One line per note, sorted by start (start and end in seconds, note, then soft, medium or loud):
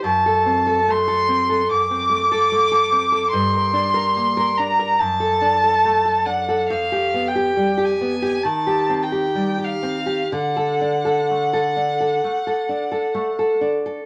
0.04 1.66 F#2 medium
0.04 0.92 A5 medium
0.26 0.59 A4 soft
0.46 0.79 C4 medium
0.67 0.99 A4 soft
0.88 1.21 A3 soft
0.88 1.70 C6 medium
1.08 1.41 A4 soft
1.28 1.61 C4 soft
1.49 1.82 A4 soft
1.70 3.28 F#2 soft
1.70 3.30 D6 medium
1.90 2.23 C4 soft
2.10 2.43 A3 soft
2.32 2.64 A4 soft
2.52 2.84 A3 medium
2.71 3.04 A4 soft
2.92 3.24 C4 soft
3.12 3.32 A4 soft
3.31 4.96 G2 medium
3.31 4.58 C6 medium
3.54 3.86 A#4 soft
3.73 4.07 D4 soft
3.94 4.28 A#4 medium
4.16 4.49 A#3 medium
4.37 4.70 A#4 medium
4.57 4.92 D4 soft
4.57 5.00 A#5 medium
4.79 5.00 A#4 soft
4.99 6.67 F#2 medium
4.99 6.28 A5 medium
5.20 5.54 A4 medium
5.41 5.76 D4 soft
5.64 5.98 A4 medium
5.85 6.19 A3 medium
6.05 6.40 A4 soft
6.26 6.62 D4 soft
6.26 6.68 F#5 medium
6.49 6.71 A4 soft
6.69 8.41 F2 medium
6.69 7.29 F5 medium
6.92 7.27 G4 soft
7.14 7.49 B3 soft
7.28 7.86 G5 medium
7.36 7.71 G4 medium
7.57 7.92 G3 soft
7.78 8.14 G4 medium
7.84 8.45 G#5 medium
8.01 8.37 B3 medium
8.22 8.45 G4 soft
8.43 10.28 D#3 soft
8.43 9.04 A5 medium
8.67 9.03 G4 soft
8.89 9.26 C4 soft
9.02 9.66 G5 medium
9.12 9.49 G4 soft
9.35 9.73 G3 soft
9.58 9.97 G4 soft
9.64 10.33 F5 medium
9.83 10.22 C4 soft
10.06 10.32 G4 soft
10.31 12.20 D3 medium
10.31 13.63 F#5 medium
10.57 10.96 A4 soft
10.81 11.20 D4 soft
11.05 11.44 A4 soft
11.30 11.68 A3 soft
11.53 11.91 A4 soft
11.77 12.14 D4 soft
12.00 12.38 A4 soft
12.24 12.61 A3 soft
12.47 12.84 A4 soft
12.69 13.06 D4 soft
12.92 13.29 A4 soft
13.14 13.53 A3 soft
13.39 13.77 A4 soft
13.61 14.00 D4 soft
13.86 14.06 A4 soft